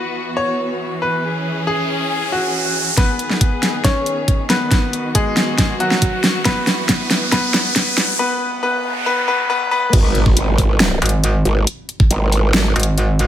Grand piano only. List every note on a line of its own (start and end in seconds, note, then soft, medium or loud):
0.00 0.28 B4 medium
0.37 0.93 C#5 medium
1.02 1.59 B4 medium
1.67 2.24 G#4 medium
2.32 2.89 F#4 medium
2.98 3.76 B3 medium
2.98 3.76 B4 medium
3.84 4.41 C#4 medium
3.84 4.41 C#5 medium
4.50 5.06 B3 medium
4.50 5.06 B4 medium
5.15 5.72 G#3 medium
5.15 5.72 G#4 medium
5.80 6.37 F#3 medium
5.80 6.37 F#4 medium
6.45 7.24 B3 medium
6.45 7.24 B4 medium
7.32 8.11 B3 medium
7.32 8.11 B4 loud
8.19 8.61 B3 medium
8.19 8.61 B4 loud
8.63 9.05 B3 medium
8.63 9.05 B4 loud
9.06 9.26 B3 medium
9.06 9.26 B4 loud
9.28 9.48 B3 medium
9.28 9.48 B4 medium
9.50 9.70 B3 medium
9.50 9.70 B4 loud
9.71 9.91 B3 medium
9.71 9.91 B4 loud